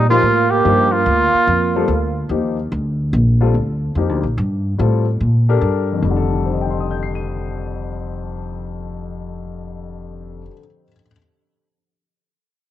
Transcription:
0.00 0.22 A#2 medium
0.09 0.22 F3 medium
0.09 0.50 A#3 medium
0.09 0.22 A#3 medium
0.09 0.22 D#4 medium
0.09 0.52 F4 loud
0.09 0.22 G4 medium
0.23 0.63 A2 medium
0.50 0.92 A#3 medium
0.50 0.94 G4 loud
0.64 1.05 G2 medium
0.64 0.90 F3 medium
0.64 0.90 A#3 medium
0.64 0.90 D#4 medium
0.64 0.90 G4 medium
0.92 2.30 A#3 medium
0.92 2.30 F4 loud
1.06 1.32 D2 medium
1.33 muted upright bass stroke soft
1.47 1.87 F2 medium
1.76 1.88 G3 medium
1.76 1.88 C4 medium
1.76 1.88 F4 medium
1.76 1.88 A4 medium
1.88 2.29 D2 medium
2.29 2.70 D#2 medium
2.29 2.55 F3 soft
2.29 2.56 A#3 soft
2.29 2.56 D#4 soft
2.29 2.56 G4 medium
2.72 3.12 D2 medium
3.13 3.53 A#1 medium
3.41 3.53 G3 medium
3.41 3.54 C4 medium
3.41 3.53 F4 medium
3.41 3.54 A4 medium
3.54 3.95 D2 medium
3.95 4.09 F2 medium
3.95 4.22 F3 medium
3.95 4.22 A#3 medium
3.95 4.22 D#4 medium
3.95 4.22 G4 medium
4.09 4.23 D2 medium
4.23 4.37 A#1 medium
4.38 4.78 G2 medium
4.78 5.20 A2 medium
4.78 5.04 G3 medium
4.78 5.04 C4 medium
4.78 5.04 F4 medium
4.78 5.05 A4 medium
5.21 5.61 A#2 medium
5.49 6.01 D4 medium
5.49 6.02 G4 medium
5.49 6.01 A4 medium
5.49 6.02 A#4 medium
5.62 6.02 G2 medium
5.92 10.40 F2 medium
5.98 10.46 D#3 medium
6.03 10.46 F1 medium
6.03 10.52 G3 medium
6.10 10.58 D3 medium
6.17 10.64 A4 medium
6.46 10.82 C5 soft
6.53 10.86 D#5 soft
6.61 10.90 G5 soft
6.70 10.95 C6 soft
6.80 11.00 D#6 soft
6.91 11.05 G6 soft
7.03 11.11 C7 soft
7.15 11.17 D#7 soft

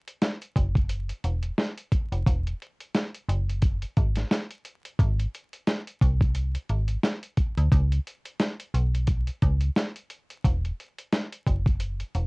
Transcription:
0.08 closed hi-hat medium
0.22 snare loud
0.22 closed hi-hat loud
0.42 closed hi-hat medium
0.56 1.12 F#1 loud
0.56 kick loud
0.56 closed hi-hat medium
0.75 kick loud
0.75 closed hi-hat soft
0.89 closed hi-hat loud
1.09 closed hi-hat medium
1.24 1.52 E1 medium
1.24 closed hi-hat medium
1.43 closed hi-hat medium
1.58 snare loud
1.58 closed hi-hat loud
1.78 closed hi-hat medium
1.92 kick medium
1.92 closed hi-hat medium
2.12 2.24 F1 medium
2.12 closed hi-hat medium
2.26 2.54 E1 loud
2.26 kick loud
2.26 closed hi-hat loud
2.47 closed hi-hat medium
2.62 closed hi-hat medium
2.80 closed hi-hat medium
2.95 snare loud
2.95 closed hi-hat medium
3.15 closed hi-hat medium
3.29 3.84 F#1 loud
3.29 closed hi-hat medium
3.50 closed hi-hat soft
3.62 kick medium
3.62 closed hi-hat loud
3.82 closed hi-hat medium
3.97 4.25 G#1 medium
3.97 kick medium
3.97 closed hi-hat medium
4.15 snare soft
4.15 closed hi-hat medium
4.31 snare loud
4.31 closed hi-hat medium
4.50 closed hi-hat medium
4.65 closed hi-hat medium
4.85 closed hi-hat medium
4.99 5.27 G#1 loud
4.99 kick loud
4.99 closed hi-hat loud
5.20 closed hi-hat medium
5.35 closed hi-hat medium
5.53 closed hi-hat medium
5.67 snare loud
5.67 closed hi-hat medium
5.87 closed hi-hat medium
6.01 6.57 C2 medium
6.01 kick loud
6.01 closed hi-hat medium
6.21 kick loud
6.21 closed hi-hat soft
6.35 closed hi-hat loud
6.55 closed hi-hat medium
6.69 6.97 G#1 medium
6.69 closed hi-hat medium
6.88 closed hi-hat medium
7.03 snare loud
7.03 closed hi-hat loud
7.23 closed hi-hat medium
7.37 kick medium
7.37 closed hi-hat medium
7.57 7.69 D2 loud
7.57 closed hi-hat medium
7.72 8.00 C#2 loud
7.72 kick loud
7.72 closed hi-hat loud
7.92 closed hi-hat medium
8.07 closed hi-hat medium
8.25 closed hi-hat medium
8.40 snare loud
8.40 closed hi-hat loud
8.60 closed hi-hat medium
8.74 9.30 B1 medium
8.74 closed hi-hat medium
8.95 closed hi-hat soft
9.07 kick medium
9.07 closed hi-hat loud
9.27 closed hi-hat medium
9.42 9.70 C#2 medium
9.42 kick medium
9.42 closed hi-hat medium
9.61 closed hi-hat medium
9.76 snare loud
9.76 closed hi-hat loud
9.96 closed hi-hat medium
10.10 closed hi-hat medium
10.30 closed hi-hat medium
10.44 10.72 E1 loud
10.44 kick loud
10.44 closed hi-hat loud
10.65 closed hi-hat medium
10.80 closed hi-hat medium
10.98 closed hi-hat medium
11.12 snare loud
11.12 closed hi-hat medium
11.32 closed hi-hat medium
11.47 12.02 F#1 medium
11.47 kick medium
11.47 closed hi-hat medium
11.66 kick loud
11.66 closed hi-hat soft
11.80 closed hi-hat loud
12.00 closed hi-hat medium
12.15 12.27 E1 medium
12.15 closed hi-hat medium

